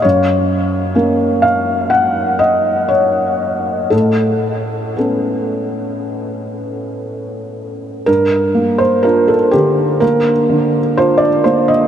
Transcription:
0.02 0.94 F#2 soft
0.02 1.43 C#5 medium
0.95 3.88 A#3 soft
0.95 3.88 C#4 soft
0.95 3.88 A#4 soft
1.42 1.91 F5 medium
1.90 2.40 F#5 medium
2.39 2.90 D#5 medium
2.89 3.91 C#5 medium
3.90 4.94 A2 soft
3.90 4.97 A4 soft
4.97 8.03 B3 soft
4.97 8.04 C#4 soft
4.97 8.04 A4 soft
8.06 9.98 G2 soft
8.06 8.80 A#4 medium
8.55 9.33 A#3 soft
8.78 9.04 C5 medium
9.03 9.49 D4 soft
9.03 9.49 F4 soft
9.03 9.28 A#4 medium
9.28 9.53 A4 medium
9.51 10.31 D3 soft
9.51 10.01 G4 medium
10.00 10.78 A#3 soft
10.00 10.97 A#4 medium
10.49 11.27 D3 soft
10.97 11.42 D4 soft
10.97 11.42 F4 soft
10.97 11.22 C5 medium
11.18 11.44 D5 medium
11.44 11.88 A#3 soft
11.44 11.69 C5 medium
11.68 11.88 D#5 medium

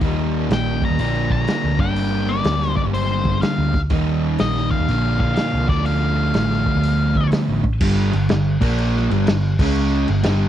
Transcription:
0.01 0.46 D#2 medium
0.01 0.98 D#3 medium
0.01 0.98 G3 medium
0.01 1.00 A#3 medium
0.01 0.99 D#4 medium
0.01 kick loud
0.01 open hi-hat soft
0.50 0.79 A#1 medium
0.50 0.85 G5 medium
0.50 snare loud
0.50 open hi-hat soft
0.82 0.99 A#5 loud
0.82 kick medium
0.90 0.98 D#2 medium
0.98 1.28 A#1 loud
0.98 1.77 A#2 medium
0.98 1.78 D3 medium
0.98 1.78 F3 medium
0.98 1.80 A#3 medium
0.98 1.79 D4 medium
0.98 1.30 A#5 medium
0.98 open hi-hat soft
1.30 1.46 A#1 medium
1.30 1.80 A#5 loud
1.30 kick medium
1.47 snare loud
1.47 open hi-hat medium
1.64 1.79 D2 medium
1.78 2.41 G1 medium
1.78 3.72 G2 medium
1.78 3.72 D3 medium
1.78 3.73 G3 medium
1.78 3.73 A#3 medium
1.78 3.73 D4 medium
1.78 2.30 G5 medium
1.78 kick loud
1.96 open hi-hat soft
2.29 2.75 D5 medium
2.44 2.74 D2 medium
2.44 snare loud
2.44 open hi-hat soft
2.62 snare soft
2.76 2.81 D5 medium
2.76 kick medium
2.85 3.22 G1 medium
2.94 3.39 C5 medium
2.94 open hi-hat soft
3.25 3.41 G1 medium
3.25 kick medium
3.41 3.80 F5 medium
3.41 snare loud
3.41 open hi-hat soft
3.58 3.88 D2 medium
3.74 kick medium
3.74 snare soft
3.90 4.36 D#2 medium
3.90 4.87 D#3 medium
3.90 4.88 G3 medium
3.90 4.88 A#3 loud
3.90 4.89 D#4 medium
3.90 kick loud
3.90 open hi-hat soft
4.38 4.69 A#1 medium
4.38 4.71 D#5 medium
4.38 snare loud
4.38 open hi-hat soft
4.57 snare soft
4.71 5.19 F5 loud
4.71 kick medium
4.80 4.88 D#2 medium
4.88 5.18 A#1 loud
4.88 5.67 A#2 medium
4.88 5.67 D3 medium
4.88 5.68 F3 medium
4.88 5.68 A#3 medium
4.88 5.71 D4 medium
4.88 open hi-hat soft
5.20 5.36 A#1 medium
5.20 5.35 F5 medium
5.20 kick medium
5.36 5.69 F5 medium
5.36 snare loud
5.36 open hi-hat medium
5.54 5.68 C2 medium
5.68 6.31 D2 medium
5.68 7.62 D3 medium
5.68 7.63 F3 medium
5.68 7.63 A3 medium
5.68 7.64 D4 medium
5.68 5.86 D5 medium
5.68 kick loud
5.68 snare soft
5.86 7.29 F5 loud
5.86 open hi-hat soft
6.34 6.64 A1 medium
6.34 snare loud
6.34 open hi-hat medium
6.52 snare soft
6.66 kick medium
6.75 7.13 D2 medium
6.83 open hi-hat medium
7.15 7.31 D2 medium
7.15 kick medium
7.32 snare loud
7.32 open hi-hat soft
7.49 7.79 A1 medium
7.64 kick medium
7.81 8.11 G1 loud
7.81 8.11 G2 medium
7.81 8.11 D3 medium
7.81 8.13 G3 loud
7.81 kick loud
7.81 crash loud
7.81 crash medium
8.12 8.29 G1 medium
8.12 8.26 G2 medium
8.12 8.27 D3 medium
8.12 crash medium
8.29 8.60 G1 medium
8.29 8.55 G2 medium
8.29 8.56 D3 medium
8.29 snare loud
8.29 crash medium
8.60 9.07 A#1 loud
8.60 9.09 A#2 loud
8.60 9.09 F3 medium
8.60 9.10 A#3 loud
8.60 kick medium
8.60 crash loud
8.78 crash medium
8.96 snare soft
9.11 9.26 G1 medium
9.11 9.26 G2 medium
9.11 9.27 D3 loud
9.11 9.28 G3 loud
9.11 crash medium
9.27 9.58 G1 medium
9.27 9.53 G2 medium
9.27 9.54 D3 medium
9.27 snare loud
9.27 crash medium
9.59 10.05 C#2 loud
9.59 10.08 C#3 medium
9.59 10.08 G#3 loud
9.59 10.08 C#4 medium
9.59 kick loud
9.59 crash loud
9.76 crash medium
10.08 10.24 G1 medium
10.08 10.22 G2 medium
10.08 10.22 D3 medium
10.08 crash medium
10.23 10.48 G1 loud
10.23 10.48 G2 loud
10.23 10.48 D3 loud
10.23 10.48 G3 loud
10.23 snare loud
10.23 crash medium

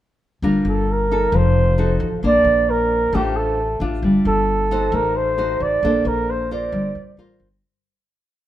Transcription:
0.42 0.63 G1 medium
0.42 1.31 G3 soft
0.42 1.07 D4 soft
0.42 1.07 F4 soft
0.42 1.07 A#4 soft
0.65 1.28 G1 medium
0.65 0.94 A4 medium
0.92 1.37 A#4 medium
1.11 1.75 D#4 soft
1.11 1.75 A4 medium
1.32 1.96 F1 medium
1.32 2.21 F3 soft
1.32 2.02 C5 medium
1.78 2.07 D#4 medium
1.78 2.07 F#4 soft
1.78 2.07 A4 medium
2.23 2.44 A#1 medium
2.23 3.11 A#3 soft
2.23 3.09 D4 soft
2.23 3.10 C5 soft
2.23 2.71 D5 medium
2.44 3.08 A#1 medium
2.70 3.16 A#4 medium
3.13 3.76 A1 medium
3.13 4.01 A3 soft
3.13 3.58 D4 medium
3.13 3.58 F4 soft
3.13 3.38 G4 medium
3.13 3.58 C5 medium
3.37 3.81 A4 medium
3.80 4.01 A1 medium
3.80 4.67 D4 medium
3.80 4.67 F4 medium
4.02 4.23 G1 medium
4.02 4.91 G3 soft
4.25 4.89 G1 medium
4.25 4.97 A4 medium
4.71 5.35 D#4 medium
4.71 5.35 F#4 soft
4.71 5.35 C5 medium
4.92 5.56 A1 medium
4.92 5.80 A3 soft
4.92 5.18 A#4 medium
5.16 5.63 C5 medium
5.38 5.79 D#4 soft
5.38 5.79 F#4 soft
5.38 5.79 C5 medium
5.60 5.81 A1 medium
5.60 6.09 D5 medium
5.83 6.04 A#1 medium
5.83 6.71 A#3 soft
5.83 6.47 D4 soft
5.83 6.47 A4 soft
5.83 6.47 C5 medium
6.05 6.68 A#1 medium
6.05 6.32 A#4 medium
6.30 6.51 C5 medium
6.51 7.15 F4 soft
6.51 7.15 A#4 soft
6.51 7.15 C5 medium
6.51 7.15 D5 medium
6.72 6.93 G1 medium
6.72 7.61 G3 soft
6.95 7.15 A#1 medium
7.17 7.38 A1 medium
7.17 7.47 F4 medium
7.17 7.47 A#4 soft
7.17 7.47 C5 soft
7.40 7.60 G1 medium

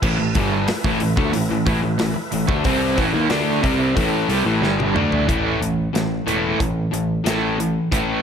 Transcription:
0.00 0.18 A1 medium
0.00 0.18 A2 loud
0.00 0.18 E3 loud
0.00 5.26 A3 medium
0.00 5.25 E4 medium
0.00 5.26 B4 medium
0.00 kick loud
0.00 crash medium
0.19 0.35 A1 medium
0.19 0.36 A2 medium
0.19 0.36 E3 medium
0.35 0.67 G1 loud
0.35 0.68 G2 medium
0.35 0.68 D3 medium
0.35 0.68 G3 loud
0.35 kick loud
0.35 open hi-hat medium
0.68 muted picked electric bass stroke soft
0.68 muted overdriven electric guitar stroke medium
0.68 snare loud
0.68 open hi-hat medium
0.84 1.00 A1 loud
0.84 1.01 A2 loud
0.84 1.01 E3 loud
0.84 kick loud
1.00 1.17 A1 medium
1.00 1.17 A2 medium
1.00 1.18 E3 medium
1.00 open hi-hat medium
1.17 1.33 D2 medium
1.17 1.33 D3 loud
1.17 1.34 A3 loud
1.17 kick loud
1.33 1.50 A1 medium
1.33 1.50 A2 medium
1.33 1.50 E3 medium
1.33 open hi-hat medium
1.51 1.66 A1 medium
1.51 1.65 A2 medium
1.51 1.66 E3 medium
1.66 1.82 A1 medium
1.66 1.81 A2 medium
1.66 1.81 E3 loud
1.66 kick loud
1.66 open hi-hat medium
1.82 1.99 A1 loud
1.82 1.99 A2 medium
1.82 1.99 E3 medium
1.99 2.15 A1 medium
1.99 2.15 A2 medium
1.99 2.17 E3 medium
1.99 snare loud
1.99 open hi-hat medium
2.16 muted overdriven electric guitar stroke medium
2.16 muted picked electric bass stroke soft
2.32 2.48 A1 medium
2.32 2.48 A2 medium
2.32 2.49 E3 medium
2.32 open hi-hat medium
2.49 2.64 D2 medium
2.49 2.64 D3 loud
2.49 2.65 A3 medium
2.49 kick loud
2.64 2.96 C2 medium
2.64 2.97 C3 medium
2.64 2.98 G3 loud
2.64 2.98 C4 loud
2.64 kick loud
2.64 open hi-hat medium
2.98 3.13 A1 medium
2.98 3.13 A2 loud
2.98 3.14 E3 loud
2.98 kick medium
2.98 open hi-hat medium
3.14 3.29 D#2 medium
3.14 3.29 D#3 medium
3.14 3.30 A#3 medium
3.30 3.61 D2 medium
3.30 3.62 D3 medium
3.30 3.62 A3 medium
3.30 3.62 D4 loud
3.30 snare loud
3.30 open hi-hat medium
3.62 3.95 C2 medium
3.62 3.95 C3 medium
3.62 3.95 G3 loud
3.62 3.95 C4 medium
3.62 kick loud
3.62 open hi-hat medium
3.96 4.27 A1 medium
3.96 4.28 A2 loud
3.96 4.29 E3 loud
3.96 4.29 A3 loud
3.96 kick loud
3.96 open hi-hat medium
4.29 4.44 C2 medium
4.29 4.45 C3 medium
4.29 4.46 G3 medium
4.29 open hi-hat medium
4.45 4.61 A1 medium
4.45 4.61 A2 medium
4.45 4.62 E3 loud
4.62 4.93 G1 medium
4.62 4.94 G2 medium
4.62 4.93 D3 medium
4.62 4.95 G3 loud
4.62 snare medium
4.80 high tom medium
4.94 5.26 D2 loud
4.94 5.27 D3 medium
4.94 5.27 A3 medium
4.94 5.27 D4 medium
4.94 mid tom medium
5.12 floor tom medium
5.27 5.54 A1 medium
5.27 5.59 A2 medium
5.27 5.59 E3 medium
5.27 5.59 A3 medium
5.27 kick loud
5.27 closed hi-hat medium
5.60 5.87 A1 medium
5.60 5.90 A2 medium
5.60 5.90 E3 medium
5.60 closed hi-hat medium
5.93 6.20 A1 medium
5.93 6.23 A2 medium
5.93 6.24 E3 medium
5.93 snare loud
5.93 closed hi-hat medium
6.26 6.53 E1 medium
6.26 6.57 A2 medium
6.26 6.58 E3 medium
6.26 6.58 A3 medium
6.26 closed hi-hat medium
6.59 6.85 A1 medium
6.59 6.89 A2 medium
6.59 6.89 E3 medium
6.59 kick loud
6.59 closed hi-hat medium
6.91 7.19 A1 medium
6.91 7.22 A2 medium
6.91 7.22 E3 medium
6.91 closed hi-hat medium
7.24 7.77 A1 medium
7.24 7.56 A2 medium
7.24 7.56 E3 medium
7.24 7.56 A3 medium
7.24 snare loud
7.24 closed hi-hat medium
7.58 7.88 A2 medium
7.58 7.88 E3 medium
7.58 closed hi-hat medium
7.91 8.18 A1 medium
7.91 8.22 A2 medium
7.91 8.22 E3 medium
7.91 8.22 A3 loud
7.91 kick loud
7.91 closed hi-hat medium

